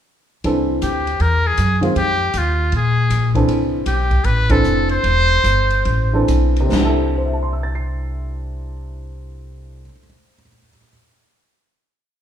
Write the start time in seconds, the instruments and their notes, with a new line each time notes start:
0.44 upright bass C2, grand piano E3 C4 D4 A4, kick, ride
0.82 upright bass D2, muted trumpet G4, kick, hi-hat pedal, ride
1.07 ride
1.20 upright bass E2, muted trumpet A#4, kick, ride
1.47 muted trumpet G#4
1.57 upright bass F#2, kick, hi-hat pedal, ride
1.81 grand piano D#3 G#3 C4 F4, ride
1.95 upright bass F2, muted trumpet G4, kick, ride
2.33 upright bass D#2, kick, hi-hat pedal, ride
2.38 muted trumpet F4
2.72 upright bass A#2, kick, ride
2.77 muted trumpet G#4
3.10 upright bass A#1, kick, hi-hat pedal, ride
3.35 grand piano E3 C4 D4 A4, kick, ride
3.48 upright bass C2, kick, ride
3.86 upright bass B1, muted trumpet G4, kick, hi-hat pedal, ride
4.11 kick, ride
4.24 upright bass A1, muted trumpet B4, kick, ride
4.50 grand piano E3 C4 D4 A4, muted trumpet A4, kick, ride
4.64 upright bass F1, hi-hat pedal
4.89 muted trumpet C5, ride
5.03 upright bass E1, kick, ride
5.44 upright bass G1, kick, hi-hat pedal, ride
5.70 ride
5.85 upright bass A1, kick, ride
6.13 grand piano E3 C4 D4 A4
6.28 upright bass B1, kick, hi-hat pedal, ride
6.56 ride
6.61 grand piano C3
6.67 grand piano C4
6.72 upright bass C2, grand piano D4, snare, china
6.80 grand piano E4
6.85 grand piano A4
7.18 grand piano C5
7.25 grand piano E5
7.33 grand piano A5
7.43 grand piano C6
7.53 grand piano E6
7.63 grand piano A6
7.75 grand piano C7